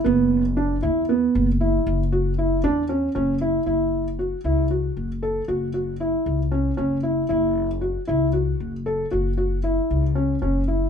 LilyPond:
<<
  \new Staff \with { instrumentName = "Felt piano" } { \time 7/8 \key fis \minor \tempo 4 = 116 b4 d'8 e'8 b4 e'8~ | e'8 fis'8 e'8 d'8 cis'8 cis'8 e'8 | e'4 fis'8 e'8 fis'4 a'8 | fis'8 fis'8 e'4 cis'8 cis'8 e'8 |
e'4 fis'8 e'8 fis'4 a'8 | fis'8 fis'8 e'4 cis'8 cis'8 e'8 | }
  \new Staff \with { instrumentName = "Upright bass" } { \clef bass \time 7/8 \key fis \minor fis,,4. e,4 fis,,4 | fis,,4. e,4 fis,,4 | fis,,4. cis,4 fis,,4 | fis,,4. cis,4 fis,,4 |
fis,,4. cis,4 fis,,4 | fis,,4. cis,4 fis,,4 | }
>>